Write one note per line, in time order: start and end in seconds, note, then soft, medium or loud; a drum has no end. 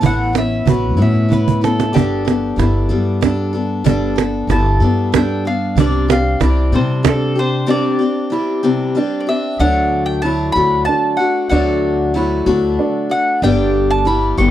0.01 0.63 A1 medium
0.01 0.34 A2 medium
0.01 0.34 E3 medium
0.01 0.35 B3 medium
0.01 0.34 C#4 medium
0.01 0.32 E4 medium
0.01 0.66 E4 medium
0.01 cajon bass medium
0.06 0.35 F#5 medium
0.19 cajon slap soft
0.33 0.65 B3 soft
0.33 0.67 C#4 soft
0.33 0.66 E4 soft
0.33 cajon slap medium
0.38 0.67 E5 medium
0.65 0.98 A1 medium
0.65 0.97 E3 medium
0.65 0.96 B3 medium
0.65 0.96 C#4 medium
0.65 0.95 E4 medium
0.65 1.29 F#4 medium
0.65 0.99 B4 medium
0.65 cajon bass medium
0.97 1.90 A2 medium
0.97 1.31 A2 soft
0.97 1.27 E3 soft
0.97 1.29 B3 medium
0.97 1.29 C#4 medium
0.97 1.30 E4 medium
1.02 1.31 E5 medium
1.29 1.62 E3 soft
1.29 1.62 B3 soft
1.29 1.61 C#4 medium
1.29 1.93 E4 medium
1.29 1.60 E4 medium
1.29 cajon bass soft
1.33 1.63 B4 medium
1.48 cajon bass medium
1.61 1.93 B3 soft
1.61 1.94 C#4 soft
1.61 1.94 E4 soft
1.61 1.94 A4 medium
1.61 cajon slap medium
1.80 cajon slap medium
1.93 2.55 G1 medium
1.93 2.26 G3 medium
1.93 2.26 B3 medium
1.93 2.25 D4 medium
1.93 2.57 D4 medium
1.93 3.82 G4 medium
1.93 2.24 A4 medium
1.93 cajon bass medium
2.25 2.57 B3 soft
2.25 2.58 D4 soft
2.25 2.57 A4 soft
2.25 cajon slap medium
2.56 2.90 G1 medium
2.56 2.89 G3 soft
2.56 2.89 B3 medium
2.56 2.88 D4 medium
2.56 3.21 E4 medium
2.56 2.88 A4 medium
2.56 cajon bass medium
2.56 cajon slap soft
2.88 3.81 G2 medium
2.88 3.20 G3 medium
2.88 3.21 B3 medium
2.88 3.22 D4 medium
2.88 3.21 A4 medium
3.21 3.53 G3 medium
3.21 3.54 B3 medium
3.21 3.84 D4 medium
3.21 3.53 D4 medium
3.21 3.52 A4 medium
3.21 cajon bass medium
3.21 cajon slap medium
3.53 3.83 B3 soft
3.53 3.84 D4 soft
3.53 3.85 A4 medium
3.84 4.46 G1 medium
3.84 4.17 G3 medium
3.84 4.17 B3 medium
3.84 4.16 D4 medium
3.84 4.48 D4 medium
3.84 4.14 A4 medium
3.84 cajon bass medium
4.16 4.48 B3 soft
4.16 4.49 D4 soft
4.16 4.49 A4 medium
4.16 cajon slap medium
4.47 4.82 G1 medium
4.47 4.81 G3 medium
4.47 4.81 B3 medium
4.47 4.80 D4 medium
4.47 5.12 E4 medium
4.47 4.79 A4 medium
4.47 cajon bass medium
4.47 cajon slap soft
4.52 5.12 A5 medium
4.80 5.72 G2 medium
4.80 5.11 G3 soft
4.80 5.12 B3 medium
4.80 5.13 D4 medium
4.80 5.13 A4 medium
5.12 5.45 G3 medium
5.12 5.45 B3 medium
5.12 5.76 D4 medium
5.12 5.45 D4 medium
5.12 5.44 A4 medium
5.12 cajon bass medium
5.12 cajon slap medium
5.16 5.46 G5 medium
5.45 5.77 B3 soft
5.45 5.77 D4 soft
5.45 5.77 A4 medium
5.45 5.77 F5 medium
5.76 6.37 C2 medium
5.76 6.09 C3 medium
5.76 6.09 G3 medium
5.76 6.09 C4 medium
5.76 6.40 D4 medium
5.76 6.08 D4 medium
5.76 6.07 G4 medium
5.76 cajon bass medium
5.80 6.10 D5 medium
6.08 6.40 C4 soft
6.08 6.40 D4 soft
6.08 6.41 G4 medium
6.08 6.41 F5 medium
6.08 cajon slap medium
6.40 6.74 C2 medium
6.40 6.72 G3 medium
6.40 6.72 C4 medium
6.40 6.71 D4 medium
6.40 7.03 E4 medium
6.40 6.71 G4 medium
6.40 6.73 D5 medium
6.40 cajon bass medium
6.40 cajon slap soft
6.72 7.64 C3 medium
6.72 7.05 C3 medium
6.72 7.02 G3 soft
6.72 7.03 C4 medium
6.72 7.04 D4 medium
6.72 7.04 G4 medium
6.72 7.05 C5 medium
7.03 7.36 G3 medium
7.03 7.36 C4 medium
7.03 7.36 D4 medium
7.03 7.67 D4 medium
7.03 7.34 G4 medium
7.03 7.37 A4 medium
7.03 cajon bass medium
7.03 cajon slap medium
7.35 7.66 C4 soft
7.35 7.67 D4 soft
7.35 7.67 G4 medium
7.35 7.69 C5 medium
7.66 7.99 C3 medium
7.66 8.00 G3 medium
7.66 8.00 C4 medium
7.66 7.99 D4 medium
7.66 8.31 D4 medium
7.66 7.98 G4 medium
7.66 9.19 D5 medium
7.99 8.31 C4 soft
7.99 8.31 D4 soft
7.99 8.31 G4 medium
8.30 8.63 G3 medium
8.30 8.63 C4 medium
8.30 8.62 D4 medium
8.30 8.95 E4 medium
8.30 8.62 G4 medium
8.63 8.96 C3 medium
8.63 8.94 G3 medium
8.63 8.94 C4 medium
8.63 8.95 D4 medium
8.63 8.95 G4 medium
8.95 9.27 G3 medium
8.95 9.28 C4 medium
8.95 9.27 D4 medium
8.95 9.59 D4 medium
8.95 9.26 G4 medium
9.20 9.28 D5 medium
9.27 9.60 C4 soft
9.27 9.60 D4 medium
9.27 9.59 G4 medium
9.27 9.60 E5 medium
9.59 10.51 D2 medium
9.59 10.57 D3 medium
9.59 10.22 F#3 medium
9.59 10.23 A3 medium
9.59 10.22 D4 medium
9.59 10.25 D4 medium
9.59 10.24 F#4 medium
9.59 10.05 F#5 medium
10.06 10.21 G5 medium
10.22 10.55 F#3 medium
10.22 10.55 A3 medium
10.22 10.54 D4 medium
10.22 10.86 E4 medium
10.22 10.52 A5 medium
10.26 10.54 F#4 medium
10.52 10.86 D2 medium
10.52 11.20 D4 medium
10.52 11.18 F#4 medium
10.52 10.85 B5 loud
10.56 11.20 D3 medium
10.56 11.20 F#3 medium
10.56 11.20 A3 medium
10.85 11.50 D4 medium
10.85 11.16 A5 loud
11.17 11.51 D4 medium
11.17 11.51 F#4 medium
11.17 11.48 F#5 medium
11.22 11.50 A3 soft
11.49 12.43 D2 medium
11.49 12.14 D3 medium
11.49 12.13 F#3 medium
11.49 12.14 A3 medium
11.49 12.14 D4 loud
11.49 12.15 D4 medium
11.49 12.16 F#4 medium
11.49 12.74 F#5 medium
12.14 12.46 F#3 medium
12.14 12.46 A3 medium
12.14 12.45 D4 medium
12.14 12.78 E4 medium
12.14 12.45 F#4 medium
12.46 12.77 D2 loud
12.46 13.11 D3 medium
12.46 13.11 F#3 medium
12.46 13.11 A3 medium
12.46 13.11 D4 medium
12.46 13.08 F#4 medium
12.79 13.41 D4 medium
13.09 13.43 A3 soft
13.09 13.43 D4 soft
13.09 13.42 F#4 medium
13.09 13.43 F#5 medium
13.42 14.34 G1 loud
13.42 14.06 G2 medium
13.42 14.07 D3 medium
13.42 14.04 G3 medium
13.42 14.05 B3 medium
13.42 14.05 D4 loud
13.42 14.07 D4 loud
13.42 14.07 G4 loud
13.42 13.90 G5 medium
13.91 14.06 A5 loud
14.05 14.37 G3 medium
14.05 14.37 B3 medium
14.05 14.37 D4 medium
14.05 14.51 E4 medium
14.05 14.36 G4 medium
14.05 14.38 B5 medium
14.37 14.51 G1 loud
14.37 14.51 G2 medium
14.37 14.51 D3 medium
14.37 14.51 G3 medium
14.37 14.51 B3 medium
14.37 14.51 D4 medium
14.37 14.51 G4 medium
14.37 14.51 C#6 loud